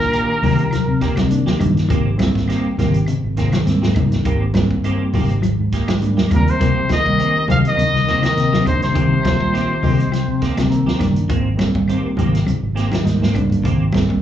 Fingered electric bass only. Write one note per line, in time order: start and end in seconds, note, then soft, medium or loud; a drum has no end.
0.00 0.26 A#1 medium
0.42 0.84 C2 loud
0.88 1.00 C3 medium
1.17 1.44 C3 medium
1.61 1.75 G2 medium
1.90 2.17 G#1 medium
2.35 2.48 G#1 medium
2.65 muted fingered electric bass stroke soft
2.78 3.05 G#1 loud
3.24 3.50 G#1 loud
3.67 3.93 G#2 loud
4.12 4.24 G#1 medium
4.25 4.70 G#1 loud
4.70 4.97 G1 loud
5.13 5.54 G#1 loud
5.59 5.71 G#2 medium
5.88 6.15 G#2 medium
6.31 6.45 D#2 medium
6.61 6.87 C2 loud
7.06 7.18 C2 loud
7.35 muted fingered electric bass stroke soft
7.49 7.75 C2 medium
7.78 muted fingered electric bass stroke soft
7.93 8.20 C2 medium
8.37 8.64 C3 medium
8.82 8.94 C2 medium
8.95 9.40 C2 medium
9.40 9.67 A#1 loud
9.83 10.24 C2 medium
10.28 10.40 C3 medium
10.57 10.84 C3 medium
11.01 11.15 G2 loud
11.30 11.56 G#1 medium
11.75 11.87 G#1 loud
12.05 muted fingered electric bass stroke soft
12.18 12.45 G#1 loud
12.62 12.89 G#1 loud
13.06 13.32 G#2 loud
13.51 13.63 G#1 medium
13.65 14.10 G#1 loud
14.10 14.22 G1 medium